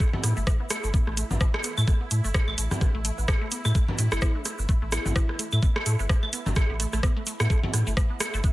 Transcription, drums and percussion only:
0.00 kick loud
0.00 shaker soft
0.13 low conga loud
0.24 cross-stick soft
0.24 closed hi-hat loud
0.24 shaker loud
0.37 shaker medium
0.47 kick loud
0.47 cross-stick medium
0.47 shaker soft
0.70 cross-stick medium
0.70 closed hi-hat loud
0.70 claves medium
0.70 shaker medium
0.84 shaker medium
0.94 kick loud
0.94 shaker soft
1.07 cross-stick soft
1.17 closed hi-hat loud
1.17 shaker loud
1.31 low conga medium
1.31 shaker medium
1.40 kick loud
1.40 cross-stick medium
1.40 shaker soft
1.54 cross-stick medium
1.54 claves medium
1.64 closed hi-hat loud
1.64 shaker medium
1.77 claves medium
1.77 shaker medium
1.87 kick loud
1.87 cross-stick soft
1.87 shaker soft
2.11 closed hi-hat medium
2.11 shaker medium
2.25 shaker medium
2.34 kick loud
2.34 cross-stick medium
2.34 claves medium
2.34 shaker soft
2.48 claves medium
2.58 closed hi-hat medium
2.58 shaker loud
2.71 cross-stick soft
2.71 low conga loud
2.71 shaker medium
2.81 kick loud
2.81 cross-stick soft
2.81 shaker soft
3.05 closed hi-hat loud
3.05 shaker medium
3.18 shaker medium
3.28 kick loud
3.28 cross-stick medium
3.28 claves medium
3.28 shaker soft
3.51 closed hi-hat loud
3.51 shaker medium
3.65 cross-stick soft
3.65 claves medium
3.65 shaker medium
3.75 kick loud
3.75 shaker soft
3.88 low conga medium
3.98 closed hi-hat medium
3.98 shaker loud
4.12 cross-stick medium
4.12 claves medium
4.12 shaker medium
4.22 kick loud
4.22 cross-stick loud
4.22 shaker soft
4.45 cross-stick soft
4.45 closed hi-hat medium
4.45 shaker medium
4.59 shaker medium
4.69 kick loud
4.69 shaker soft
4.92 cross-stick medium
4.92 closed hi-hat medium
4.92 claves medium
4.92 shaker medium
5.06 low conga medium
5.06 shaker medium
5.16 kick loud
5.16 cross-stick medium
5.16 shaker soft
5.29 cross-stick soft
5.39 closed hi-hat medium
5.39 shaker medium
5.52 claves medium
5.52 shaker soft
5.62 kick loud
5.62 shaker soft
5.76 cross-stick medium
5.76 claves medium
5.86 closed hi-hat medium
5.86 shaker medium
5.99 shaker medium
6.09 kick loud
6.09 cross-stick medium
6.09 cross-stick soft
6.09 shaker soft
6.23 claves soft
6.33 closed hi-hat medium
6.33 shaker medium
6.46 low conga medium
6.46 shaker soft
6.55 kick loud
6.55 cross-stick medium
6.55 claves medium
6.55 shaker soft
6.80 closed hi-hat medium
6.80 shaker medium
6.93 cross-stick soft
6.93 shaker medium
7.03 kick loud
7.03 cross-stick medium
7.03 shaker soft
7.26 closed hi-hat medium
7.26 shaker medium
7.40 cross-stick medium
7.40 claves medium
7.40 shaker medium
7.50 kick loud
7.50 shaker soft
7.63 low conga medium
7.74 cross-stick soft
7.74 closed hi-hat medium
7.74 shaker medium
7.87 shaker soft
7.97 kick loud
7.97 cross-stick medium
7.97 shaker soft
8.20 cross-stick medium
8.20 closed hi-hat medium
8.20 claves medium
8.20 shaker loud
8.34 shaker soft
8.44 kick loud
8.44 shaker soft

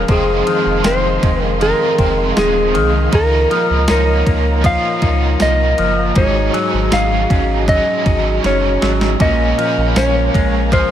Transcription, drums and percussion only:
0.08 kick loud
0.08 ride medium
0.47 ride soft
0.84 snare loud
0.84 ride medium
0.84 tambourine medium
1.23 kick loud
1.23 ride soft
1.61 ride medium
1.99 kick medium
1.99 ride soft
2.37 snare loud
2.37 ride medium
2.37 tambourine medium
2.75 ride soft
3.13 kick loud
3.13 ride medium
3.51 ride soft
3.88 snare loud
3.88 ride medium
3.88 tambourine medium
4.27 kick loud
4.27 ride soft
4.64 kick loud
4.64 ride medium
5.02 kick medium
5.02 ride soft
5.40 snare medium
5.40 ride medium
5.40 tambourine medium
5.78 ride soft
6.16 kick loud
6.16 ride medium
6.54 ride soft
6.92 snare loud
6.92 ride medium
6.92 tambourine medium
7.30 kick loud
7.30 ride soft
7.68 kick loud
7.68 ride medium
8.06 kick medium
8.06 ride soft
8.44 snare medium
8.44 ride medium
8.82 snare loud
8.82 ride soft
9.01 snare medium
9.20 kick loud
9.20 ride medium
9.59 ride soft
9.96 snare loud
9.96 ride medium
9.96 tambourine medium
10.35 kick loud
10.35 ride soft
10.72 kick medium
10.72 ride medium

